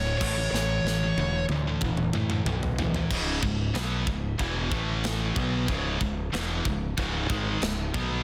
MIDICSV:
0, 0, Header, 1, 5, 480
1, 0, Start_track
1, 0, Tempo, 644468
1, 393, Time_signature, 4, 2, 24, 8
1, 6130, End_track
2, 0, Start_track
2, 0, Title_t, "Lead electric guitar"
2, 0, Program_c, 0, 29
2, 0, Note_on_c, 0, 73, 100
2, 125, Note_off_c, 0, 73, 0
2, 134, Note_on_c, 0, 73, 83
2, 372, Note_off_c, 0, 73, 0
2, 381, Note_on_c, 0, 73, 86
2, 1076, Note_off_c, 0, 73, 0
2, 6130, End_track
3, 0, Start_track
3, 0, Title_t, "Distorted electric guitar"
3, 0, Program_c, 1, 30
3, 0, Note_on_c, 1, 38, 83
3, 0, Note_on_c, 1, 45, 88
3, 130, Note_off_c, 1, 38, 0
3, 130, Note_off_c, 1, 45, 0
3, 150, Note_on_c, 1, 45, 97
3, 157, Note_on_c, 1, 52, 96
3, 160, Note_on_c, 1, 57, 96
3, 257, Note_off_c, 1, 45, 0
3, 260, Note_off_c, 1, 52, 0
3, 262, Note_off_c, 1, 57, 0
3, 279, Note_on_c, 1, 52, 84
3, 281, Note_on_c, 1, 45, 65
3, 396, Note_off_c, 1, 52, 0
3, 397, Note_off_c, 1, 45, 0
3, 409, Note_on_c, 1, 45, 82
3, 411, Note_on_c, 1, 52, 97
3, 617, Note_off_c, 1, 45, 0
3, 618, Note_off_c, 1, 52, 0
3, 641, Note_on_c, 1, 52, 88
3, 642, Note_on_c, 1, 45, 71
3, 756, Note_off_c, 1, 52, 0
3, 757, Note_off_c, 1, 45, 0
3, 767, Note_on_c, 1, 52, 101
3, 770, Note_on_c, 1, 45, 80
3, 875, Note_off_c, 1, 45, 0
3, 880, Note_off_c, 1, 52, 0
3, 884, Note_on_c, 1, 45, 86
3, 891, Note_on_c, 1, 52, 100
3, 1094, Note_off_c, 1, 45, 0
3, 1098, Note_off_c, 1, 52, 0
3, 1128, Note_on_c, 1, 52, 86
3, 1129, Note_on_c, 1, 45, 70
3, 1237, Note_off_c, 1, 52, 0
3, 1240, Note_off_c, 1, 45, 0
3, 1245, Note_on_c, 1, 52, 86
3, 1251, Note_on_c, 1, 45, 76
3, 1359, Note_off_c, 1, 52, 0
3, 1361, Note_off_c, 1, 45, 0
3, 1373, Note_on_c, 1, 45, 98
3, 1378, Note_on_c, 1, 52, 104
3, 1578, Note_off_c, 1, 45, 0
3, 1581, Note_off_c, 1, 52, 0
3, 1601, Note_on_c, 1, 52, 89
3, 1604, Note_on_c, 1, 45, 70
3, 1710, Note_off_c, 1, 45, 0
3, 1710, Note_off_c, 1, 52, 0
3, 1719, Note_on_c, 1, 45, 74
3, 1719, Note_on_c, 1, 52, 83
3, 1828, Note_off_c, 1, 45, 0
3, 1828, Note_off_c, 1, 52, 0
3, 1837, Note_on_c, 1, 45, 84
3, 1837, Note_on_c, 1, 52, 92
3, 2050, Note_off_c, 1, 45, 0
3, 2050, Note_off_c, 1, 52, 0
3, 2079, Note_on_c, 1, 52, 81
3, 2086, Note_on_c, 1, 45, 73
3, 2195, Note_off_c, 1, 52, 0
3, 2199, Note_off_c, 1, 45, 0
3, 2203, Note_on_c, 1, 52, 86
3, 2209, Note_on_c, 1, 45, 75
3, 2317, Note_off_c, 1, 52, 0
3, 2319, Note_off_c, 1, 45, 0
3, 2322, Note_on_c, 1, 37, 98
3, 2328, Note_on_c, 1, 44, 104
3, 2330, Note_on_c, 1, 49, 113
3, 2548, Note_off_c, 1, 44, 0
3, 2550, Note_off_c, 1, 37, 0
3, 2554, Note_off_c, 1, 49, 0
3, 2557, Note_on_c, 1, 44, 75
3, 2559, Note_on_c, 1, 37, 66
3, 2746, Note_off_c, 1, 44, 0
3, 2748, Note_off_c, 1, 37, 0
3, 2791, Note_on_c, 1, 47, 100
3, 2793, Note_on_c, 1, 54, 100
3, 2796, Note_on_c, 1, 59, 114
3, 3024, Note_off_c, 1, 47, 0
3, 3025, Note_off_c, 1, 54, 0
3, 3027, Note_off_c, 1, 59, 0
3, 3036, Note_on_c, 1, 37, 67
3, 3039, Note_on_c, 1, 44, 77
3, 3226, Note_off_c, 1, 37, 0
3, 3228, Note_off_c, 1, 44, 0
3, 3269, Note_on_c, 1, 40, 107
3, 3271, Note_on_c, 1, 47, 106
3, 3275, Note_on_c, 1, 52, 107
3, 3503, Note_off_c, 1, 40, 0
3, 3504, Note_off_c, 1, 47, 0
3, 3505, Note_off_c, 1, 52, 0
3, 3513, Note_on_c, 1, 45, 87
3, 3514, Note_on_c, 1, 52, 103
3, 3521, Note_on_c, 1, 57, 103
3, 3986, Note_off_c, 1, 45, 0
3, 3986, Note_off_c, 1, 52, 0
3, 3990, Note_off_c, 1, 57, 0
3, 3996, Note_on_c, 1, 47, 103
3, 3998, Note_on_c, 1, 54, 100
3, 4005, Note_on_c, 1, 59, 93
3, 4227, Note_off_c, 1, 47, 0
3, 4229, Note_off_c, 1, 54, 0
3, 4231, Note_on_c, 1, 37, 103
3, 4232, Note_off_c, 1, 59, 0
3, 4237, Note_on_c, 1, 44, 109
3, 4238, Note_on_c, 1, 49, 116
3, 4465, Note_off_c, 1, 37, 0
3, 4468, Note_off_c, 1, 44, 0
3, 4468, Note_off_c, 1, 49, 0
3, 4481, Note_on_c, 1, 37, 66
3, 4484, Note_on_c, 1, 44, 69
3, 4669, Note_off_c, 1, 37, 0
3, 4671, Note_off_c, 1, 44, 0
3, 4714, Note_on_c, 1, 40, 104
3, 4717, Note_on_c, 1, 47, 101
3, 4721, Note_on_c, 1, 52, 117
3, 4947, Note_off_c, 1, 40, 0
3, 4948, Note_off_c, 1, 47, 0
3, 4950, Note_off_c, 1, 52, 0
3, 4956, Note_on_c, 1, 37, 70
3, 4962, Note_on_c, 1, 44, 72
3, 5147, Note_off_c, 1, 37, 0
3, 5150, Note_off_c, 1, 44, 0
3, 5195, Note_on_c, 1, 37, 102
3, 5201, Note_on_c, 1, 44, 103
3, 5204, Note_on_c, 1, 49, 120
3, 5424, Note_off_c, 1, 44, 0
3, 5427, Note_off_c, 1, 37, 0
3, 5432, Note_off_c, 1, 49, 0
3, 5433, Note_on_c, 1, 44, 95
3, 5436, Note_on_c, 1, 51, 105
3, 5441, Note_on_c, 1, 56, 108
3, 5667, Note_off_c, 1, 44, 0
3, 5668, Note_off_c, 1, 51, 0
3, 5671, Note_off_c, 1, 56, 0
3, 5675, Note_on_c, 1, 37, 66
3, 5683, Note_on_c, 1, 44, 72
3, 5867, Note_off_c, 1, 37, 0
3, 5871, Note_off_c, 1, 44, 0
3, 5912, Note_on_c, 1, 47, 94
3, 5917, Note_on_c, 1, 54, 101
3, 5919, Note_on_c, 1, 59, 103
3, 6130, Note_off_c, 1, 47, 0
3, 6130, Note_off_c, 1, 54, 0
3, 6130, Note_off_c, 1, 59, 0
3, 6130, End_track
4, 0, Start_track
4, 0, Title_t, "Fingered electric bass"
4, 0, Program_c, 2, 33
4, 0, Note_on_c, 2, 26, 95
4, 113, Note_off_c, 2, 26, 0
4, 158, Note_on_c, 2, 33, 98
4, 355, Note_off_c, 2, 33, 0
4, 387, Note_on_c, 2, 33, 100
4, 589, Note_off_c, 2, 33, 0
4, 629, Note_on_c, 2, 33, 95
4, 830, Note_off_c, 2, 33, 0
4, 873, Note_on_c, 2, 28, 101
4, 1073, Note_off_c, 2, 28, 0
4, 1111, Note_on_c, 2, 38, 91
4, 1311, Note_off_c, 2, 38, 0
4, 1354, Note_on_c, 2, 28, 99
4, 1553, Note_off_c, 2, 28, 0
4, 1584, Note_on_c, 2, 45, 90
4, 1787, Note_off_c, 2, 45, 0
4, 1826, Note_on_c, 2, 35, 92
4, 2228, Note_off_c, 2, 35, 0
4, 2313, Note_on_c, 2, 25, 94
4, 2536, Note_off_c, 2, 25, 0
4, 2552, Note_on_c, 2, 25, 81
4, 2775, Note_off_c, 2, 25, 0
4, 2786, Note_on_c, 2, 35, 98
4, 3012, Note_off_c, 2, 35, 0
4, 3028, Note_on_c, 2, 25, 79
4, 3253, Note_off_c, 2, 25, 0
4, 3274, Note_on_c, 2, 28, 99
4, 3496, Note_off_c, 2, 28, 0
4, 3508, Note_on_c, 2, 33, 90
4, 3961, Note_off_c, 2, 33, 0
4, 3992, Note_on_c, 2, 35, 101
4, 4216, Note_off_c, 2, 35, 0
4, 4234, Note_on_c, 2, 25, 94
4, 4457, Note_off_c, 2, 25, 0
4, 4476, Note_on_c, 2, 25, 83
4, 4698, Note_off_c, 2, 25, 0
4, 4718, Note_on_c, 2, 28, 94
4, 4939, Note_off_c, 2, 28, 0
4, 4956, Note_on_c, 2, 25, 80
4, 5178, Note_off_c, 2, 25, 0
4, 5197, Note_on_c, 2, 25, 104
4, 5419, Note_off_c, 2, 25, 0
4, 5433, Note_on_c, 2, 32, 94
4, 5657, Note_off_c, 2, 32, 0
4, 5673, Note_on_c, 2, 25, 83
4, 5897, Note_off_c, 2, 25, 0
4, 5917, Note_on_c, 2, 35, 95
4, 6130, Note_off_c, 2, 35, 0
4, 6130, End_track
5, 0, Start_track
5, 0, Title_t, "Drums"
5, 156, Note_on_c, 9, 36, 106
5, 159, Note_on_c, 9, 49, 115
5, 231, Note_off_c, 9, 36, 0
5, 233, Note_off_c, 9, 49, 0
5, 405, Note_on_c, 9, 38, 68
5, 480, Note_off_c, 9, 38, 0
5, 647, Note_on_c, 9, 38, 77
5, 721, Note_off_c, 9, 38, 0
5, 877, Note_on_c, 9, 48, 79
5, 952, Note_off_c, 9, 48, 0
5, 1108, Note_on_c, 9, 48, 85
5, 1183, Note_off_c, 9, 48, 0
5, 1348, Note_on_c, 9, 47, 92
5, 1353, Note_on_c, 9, 36, 122
5, 1422, Note_off_c, 9, 47, 0
5, 1427, Note_off_c, 9, 36, 0
5, 1470, Note_on_c, 9, 47, 81
5, 1544, Note_off_c, 9, 47, 0
5, 1589, Note_on_c, 9, 45, 93
5, 1664, Note_off_c, 9, 45, 0
5, 1711, Note_on_c, 9, 45, 90
5, 1785, Note_off_c, 9, 45, 0
5, 1835, Note_on_c, 9, 45, 108
5, 1909, Note_off_c, 9, 45, 0
5, 1958, Note_on_c, 9, 43, 95
5, 2033, Note_off_c, 9, 43, 0
5, 2074, Note_on_c, 9, 43, 110
5, 2149, Note_off_c, 9, 43, 0
5, 2193, Note_on_c, 9, 43, 99
5, 2267, Note_off_c, 9, 43, 0
5, 2313, Note_on_c, 9, 36, 111
5, 2315, Note_on_c, 9, 52, 70
5, 2315, Note_on_c, 9, 57, 122
5, 2387, Note_off_c, 9, 36, 0
5, 2390, Note_off_c, 9, 52, 0
5, 2390, Note_off_c, 9, 57, 0
5, 2552, Note_on_c, 9, 36, 91
5, 2627, Note_off_c, 9, 36, 0
5, 2791, Note_on_c, 9, 52, 65
5, 2800, Note_on_c, 9, 38, 106
5, 2866, Note_off_c, 9, 52, 0
5, 2875, Note_off_c, 9, 38, 0
5, 3031, Note_on_c, 9, 36, 95
5, 3106, Note_off_c, 9, 36, 0
5, 3273, Note_on_c, 9, 36, 104
5, 3276, Note_on_c, 9, 52, 64
5, 3347, Note_off_c, 9, 36, 0
5, 3350, Note_off_c, 9, 52, 0
5, 3512, Note_on_c, 9, 36, 108
5, 3587, Note_off_c, 9, 36, 0
5, 3752, Note_on_c, 9, 52, 64
5, 3761, Note_on_c, 9, 38, 115
5, 3826, Note_off_c, 9, 52, 0
5, 3835, Note_off_c, 9, 38, 0
5, 3993, Note_on_c, 9, 36, 110
5, 4068, Note_off_c, 9, 36, 0
5, 4233, Note_on_c, 9, 36, 113
5, 4235, Note_on_c, 9, 52, 64
5, 4308, Note_off_c, 9, 36, 0
5, 4309, Note_off_c, 9, 52, 0
5, 4475, Note_on_c, 9, 36, 91
5, 4549, Note_off_c, 9, 36, 0
5, 4719, Note_on_c, 9, 52, 63
5, 4728, Note_on_c, 9, 38, 117
5, 4794, Note_off_c, 9, 52, 0
5, 4802, Note_off_c, 9, 38, 0
5, 4955, Note_on_c, 9, 36, 95
5, 5029, Note_off_c, 9, 36, 0
5, 5196, Note_on_c, 9, 36, 113
5, 5199, Note_on_c, 9, 52, 66
5, 5271, Note_off_c, 9, 36, 0
5, 5273, Note_off_c, 9, 52, 0
5, 5435, Note_on_c, 9, 36, 111
5, 5510, Note_off_c, 9, 36, 0
5, 5673, Note_on_c, 9, 52, 70
5, 5682, Note_on_c, 9, 38, 109
5, 5748, Note_off_c, 9, 52, 0
5, 5757, Note_off_c, 9, 38, 0
5, 5916, Note_on_c, 9, 36, 112
5, 5990, Note_off_c, 9, 36, 0
5, 6130, End_track
0, 0, End_of_file